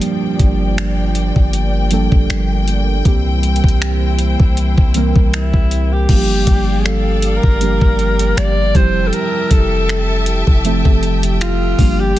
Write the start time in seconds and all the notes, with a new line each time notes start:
Already playing: F3 G3 A#3 D4 G4 D5 G5
0.01 closed hi-hat
0.39 G1, kick, closed hi-hat
0.78 finger snap, closed hi-hat
1.15 closed hi-hat
1.36 G1, kick
1.53 closed hi-hat
1.91 F3 G3 A#3 D4 A4, closed hi-hat
2.12 G1, kick
2.30 G1, finger snap, closed hi-hat
2.68 closed hi-hat
3.05 C2 E3 G3 A#3 C4 E4 G4 C5, kick, closed hi-hat
3.43 closed hi-hat
3.56 closed hi-hat
3.64 C2, kick
3.69 closed hi-hat
3.82 finger snap, closed hi-hat
4.19 closed hi-hat
4.40 C2, kick
4.57 closed hi-hat
4.78 C2, kick
4.94 E3 G3 A#3 C4 A#4, closed hi-hat
5.16 C2, kick
5.34 E4, finger snap, closed hi-hat
5.54 C2, kick
5.71 closed hi-hat
5.93 G4
6.08 G1 F3 G3 A#3 D4 F4 G4 D5 F5 G5, kick, closed hi-hat, crash
6.17 G4
6.47 G1, kick, closed hi-hat
6.79 G#4
6.86 A4, finger snap, closed hi-hat
7.22 closed hi-hat
7.37 A#4
7.43 G1, kick
7.60 F3 G3 A#3 D4 G4, closed hi-hat
7.81 G1, kick
7.99 closed hi-hat
8.19 closed hi-hat
8.37 G1 D5, finger snap, closed hi-hat
8.74 F1 F3 G3 C4 E4 G4 C5 E5 A5, kick, closed hi-hat
9.07 A4
9.13 A#4, closed hi-hat
9.51 F1 A4, kick, closed hi-hat
9.89 finger snap, closed hi-hat
10.26 closed hi-hat
10.47 F1, kick
10.64 F3 A3 C4 A4 E5, closed hi-hat
10.85 F1, kick
11.03 closed hi-hat
11.23 closed hi-hat
11.41 F4, finger snap, closed hi-hat
11.78 G1 F3 G3 A#3 D4 G4 D5, kick, open hi-hat
12.00 G4